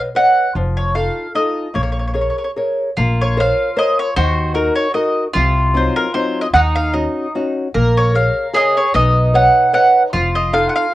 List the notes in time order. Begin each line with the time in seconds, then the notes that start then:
0.15 B4 C#5 D#5 F#5
0.55 F1 F3
0.77 C#5
0.95 D#4 F4 A4 F5
1.35 D#4 F4 A4 D#5
1.74 A#1 A#3 C#5
1.83 C#5
1.92 C#5
1.99 C#5
2.08 C#5
2.14 G#4 A#4 C#5
2.21 C#5
2.30 C#5
2.38 C#5
2.44 C#5
2.56 G#4 A#4 C#5
2.97 A#1 A#3 F4
3.21 C#5
3.37 A#4 C5 C#5 F5
3.76 A#4 C5 C#5 D#5
3.99 C#5
4.16 D#2 D#3 F#4 C5
4.54 D#4 F#4 A#4
4.76 C#5
4.94 D#4 F#4 A#4 D#5
5.34 C2 C3 F4
5.74 F#3 C4 D#4 C5
5.96 A#4
6.14 F#3 C4 D#4 C5
6.41 D#5
6.54 D#2 D#3 D#4 F#5
6.76 F5
6.93 C#4 D#4 F#4 D#5
7.35 C#4 D#4 F#4
7.74 A#1 A#3 A#4
7.97 C#5
8.14 G#4 A#4 C#5 F5
8.53 G#4 A#4 C#5 D#5
8.77 C#5
8.94 B1 B3 D#4 D#5
9.34 B4 C#5 D#5 F#5
9.73 B4 C#5 D#5 F#5
10.13 F1 F3 F4
10.35 D#5
10.53 D#4 F4 A4 F5
10.69 F#5
10.76 F5